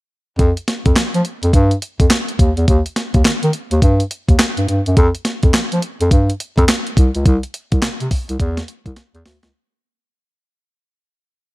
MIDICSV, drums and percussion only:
0, 0, Header, 1, 2, 480
1, 0, Start_track
1, 0, Tempo, 571429
1, 332, Time_signature, 4, 2, 24, 8
1, 9696, End_track
2, 0, Start_track
2, 0, Title_t, "Drums"
2, 328, Note_on_c, 9, 42, 64
2, 329, Note_on_c, 9, 36, 115
2, 412, Note_off_c, 9, 42, 0
2, 413, Note_off_c, 9, 36, 0
2, 479, Note_on_c, 9, 42, 53
2, 563, Note_off_c, 9, 42, 0
2, 569, Note_on_c, 9, 38, 62
2, 570, Note_on_c, 9, 42, 71
2, 653, Note_off_c, 9, 38, 0
2, 654, Note_off_c, 9, 42, 0
2, 718, Note_on_c, 9, 42, 46
2, 720, Note_on_c, 9, 36, 98
2, 802, Note_off_c, 9, 42, 0
2, 804, Note_off_c, 9, 36, 0
2, 807, Note_on_c, 9, 38, 110
2, 807, Note_on_c, 9, 42, 59
2, 809, Note_on_c, 9, 39, 83
2, 891, Note_off_c, 9, 38, 0
2, 891, Note_off_c, 9, 42, 0
2, 893, Note_off_c, 9, 39, 0
2, 961, Note_on_c, 9, 42, 57
2, 1045, Note_off_c, 9, 42, 0
2, 1048, Note_on_c, 9, 42, 66
2, 1132, Note_off_c, 9, 42, 0
2, 1199, Note_on_c, 9, 42, 59
2, 1283, Note_off_c, 9, 42, 0
2, 1288, Note_on_c, 9, 36, 96
2, 1291, Note_on_c, 9, 42, 77
2, 1372, Note_off_c, 9, 36, 0
2, 1375, Note_off_c, 9, 42, 0
2, 1438, Note_on_c, 9, 42, 49
2, 1522, Note_off_c, 9, 42, 0
2, 1530, Note_on_c, 9, 42, 74
2, 1614, Note_off_c, 9, 42, 0
2, 1678, Note_on_c, 9, 36, 84
2, 1680, Note_on_c, 9, 42, 41
2, 1762, Note_off_c, 9, 36, 0
2, 1764, Note_off_c, 9, 42, 0
2, 1767, Note_on_c, 9, 38, 109
2, 1767, Note_on_c, 9, 42, 69
2, 1770, Note_on_c, 9, 39, 91
2, 1851, Note_off_c, 9, 38, 0
2, 1851, Note_off_c, 9, 42, 0
2, 1854, Note_off_c, 9, 39, 0
2, 1919, Note_on_c, 9, 42, 51
2, 2003, Note_off_c, 9, 42, 0
2, 2009, Note_on_c, 9, 36, 93
2, 2011, Note_on_c, 9, 42, 75
2, 2093, Note_off_c, 9, 36, 0
2, 2095, Note_off_c, 9, 42, 0
2, 2159, Note_on_c, 9, 42, 43
2, 2243, Note_off_c, 9, 42, 0
2, 2250, Note_on_c, 9, 42, 70
2, 2251, Note_on_c, 9, 36, 112
2, 2334, Note_off_c, 9, 42, 0
2, 2335, Note_off_c, 9, 36, 0
2, 2401, Note_on_c, 9, 42, 55
2, 2485, Note_off_c, 9, 42, 0
2, 2488, Note_on_c, 9, 38, 59
2, 2489, Note_on_c, 9, 42, 72
2, 2572, Note_off_c, 9, 38, 0
2, 2573, Note_off_c, 9, 42, 0
2, 2638, Note_on_c, 9, 42, 43
2, 2641, Note_on_c, 9, 36, 90
2, 2722, Note_off_c, 9, 42, 0
2, 2725, Note_off_c, 9, 36, 0
2, 2730, Note_on_c, 9, 38, 109
2, 2730, Note_on_c, 9, 42, 70
2, 2732, Note_on_c, 9, 39, 88
2, 2814, Note_off_c, 9, 38, 0
2, 2814, Note_off_c, 9, 42, 0
2, 2816, Note_off_c, 9, 39, 0
2, 2879, Note_on_c, 9, 42, 55
2, 2963, Note_off_c, 9, 42, 0
2, 2967, Note_on_c, 9, 42, 68
2, 3051, Note_off_c, 9, 42, 0
2, 3117, Note_on_c, 9, 42, 56
2, 3201, Note_off_c, 9, 42, 0
2, 3210, Note_on_c, 9, 36, 98
2, 3212, Note_on_c, 9, 42, 70
2, 3294, Note_off_c, 9, 36, 0
2, 3296, Note_off_c, 9, 42, 0
2, 3360, Note_on_c, 9, 42, 50
2, 3444, Note_off_c, 9, 42, 0
2, 3451, Note_on_c, 9, 42, 80
2, 3535, Note_off_c, 9, 42, 0
2, 3600, Note_on_c, 9, 36, 82
2, 3602, Note_on_c, 9, 42, 44
2, 3684, Note_off_c, 9, 36, 0
2, 3686, Note_off_c, 9, 42, 0
2, 3689, Note_on_c, 9, 42, 64
2, 3690, Note_on_c, 9, 38, 113
2, 3692, Note_on_c, 9, 39, 90
2, 3773, Note_off_c, 9, 42, 0
2, 3774, Note_off_c, 9, 38, 0
2, 3776, Note_off_c, 9, 39, 0
2, 3841, Note_on_c, 9, 42, 51
2, 3925, Note_off_c, 9, 42, 0
2, 3935, Note_on_c, 9, 42, 69
2, 4019, Note_off_c, 9, 42, 0
2, 4084, Note_on_c, 9, 42, 46
2, 4168, Note_off_c, 9, 42, 0
2, 4173, Note_on_c, 9, 42, 62
2, 4174, Note_on_c, 9, 36, 113
2, 4257, Note_off_c, 9, 42, 0
2, 4258, Note_off_c, 9, 36, 0
2, 4323, Note_on_c, 9, 42, 52
2, 4407, Note_off_c, 9, 42, 0
2, 4409, Note_on_c, 9, 38, 63
2, 4410, Note_on_c, 9, 42, 76
2, 4493, Note_off_c, 9, 38, 0
2, 4494, Note_off_c, 9, 42, 0
2, 4558, Note_on_c, 9, 42, 46
2, 4564, Note_on_c, 9, 36, 86
2, 4642, Note_off_c, 9, 42, 0
2, 4648, Note_off_c, 9, 36, 0
2, 4651, Note_on_c, 9, 38, 107
2, 4651, Note_on_c, 9, 42, 64
2, 4654, Note_on_c, 9, 39, 94
2, 4735, Note_off_c, 9, 38, 0
2, 4735, Note_off_c, 9, 42, 0
2, 4738, Note_off_c, 9, 39, 0
2, 4804, Note_on_c, 9, 42, 55
2, 4888, Note_off_c, 9, 42, 0
2, 4892, Note_on_c, 9, 42, 77
2, 4976, Note_off_c, 9, 42, 0
2, 5044, Note_on_c, 9, 42, 58
2, 5128, Note_off_c, 9, 42, 0
2, 5134, Note_on_c, 9, 36, 94
2, 5136, Note_on_c, 9, 42, 71
2, 5218, Note_off_c, 9, 36, 0
2, 5220, Note_off_c, 9, 42, 0
2, 5289, Note_on_c, 9, 42, 53
2, 5373, Note_off_c, 9, 42, 0
2, 5377, Note_on_c, 9, 42, 74
2, 5461, Note_off_c, 9, 42, 0
2, 5524, Note_on_c, 9, 36, 87
2, 5529, Note_on_c, 9, 42, 44
2, 5608, Note_off_c, 9, 36, 0
2, 5613, Note_off_c, 9, 42, 0
2, 5615, Note_on_c, 9, 42, 63
2, 5616, Note_on_c, 9, 38, 111
2, 5618, Note_on_c, 9, 39, 97
2, 5699, Note_off_c, 9, 42, 0
2, 5700, Note_off_c, 9, 38, 0
2, 5702, Note_off_c, 9, 39, 0
2, 5767, Note_on_c, 9, 42, 49
2, 5851, Note_off_c, 9, 42, 0
2, 5854, Note_on_c, 9, 36, 97
2, 5859, Note_on_c, 9, 42, 73
2, 5938, Note_off_c, 9, 36, 0
2, 5943, Note_off_c, 9, 42, 0
2, 6002, Note_on_c, 9, 42, 43
2, 6086, Note_off_c, 9, 42, 0
2, 6095, Note_on_c, 9, 36, 122
2, 6095, Note_on_c, 9, 42, 67
2, 6179, Note_off_c, 9, 36, 0
2, 6179, Note_off_c, 9, 42, 0
2, 6244, Note_on_c, 9, 42, 57
2, 6328, Note_off_c, 9, 42, 0
2, 6333, Note_on_c, 9, 42, 74
2, 6417, Note_off_c, 9, 42, 0
2, 6482, Note_on_c, 9, 42, 46
2, 6485, Note_on_c, 9, 36, 93
2, 6566, Note_off_c, 9, 42, 0
2, 6569, Note_off_c, 9, 36, 0
2, 6571, Note_on_c, 9, 38, 107
2, 6571, Note_on_c, 9, 42, 62
2, 6573, Note_on_c, 9, 39, 91
2, 6655, Note_off_c, 9, 38, 0
2, 6655, Note_off_c, 9, 42, 0
2, 6657, Note_off_c, 9, 39, 0
2, 6723, Note_on_c, 9, 42, 56
2, 6807, Note_off_c, 9, 42, 0
2, 6812, Note_on_c, 9, 46, 78
2, 6813, Note_on_c, 9, 36, 81
2, 6896, Note_off_c, 9, 46, 0
2, 6897, Note_off_c, 9, 36, 0
2, 6964, Note_on_c, 9, 42, 60
2, 7048, Note_off_c, 9, 42, 0
2, 7053, Note_on_c, 9, 36, 102
2, 7056, Note_on_c, 9, 42, 76
2, 7137, Note_off_c, 9, 36, 0
2, 7140, Note_off_c, 9, 42, 0
2, 7202, Note_on_c, 9, 38, 61
2, 7204, Note_on_c, 9, 42, 49
2, 7286, Note_off_c, 9, 38, 0
2, 7288, Note_off_c, 9, 42, 0
2, 7292, Note_on_c, 9, 42, 77
2, 7376, Note_off_c, 9, 42, 0
2, 7440, Note_on_c, 9, 36, 87
2, 7442, Note_on_c, 9, 42, 45
2, 7524, Note_off_c, 9, 36, 0
2, 7526, Note_off_c, 9, 42, 0
2, 7530, Note_on_c, 9, 42, 68
2, 7531, Note_on_c, 9, 38, 53
2, 7614, Note_off_c, 9, 42, 0
2, 7615, Note_off_c, 9, 38, 0
2, 7682, Note_on_c, 9, 42, 46
2, 7766, Note_off_c, 9, 42, 0
2, 7775, Note_on_c, 9, 38, 89
2, 7776, Note_on_c, 9, 46, 69
2, 7859, Note_off_c, 9, 38, 0
2, 7860, Note_off_c, 9, 46, 0
2, 7920, Note_on_c, 9, 42, 47
2, 7922, Note_on_c, 9, 38, 85
2, 8004, Note_off_c, 9, 42, 0
2, 8006, Note_off_c, 9, 38, 0
2, 9696, End_track
0, 0, End_of_file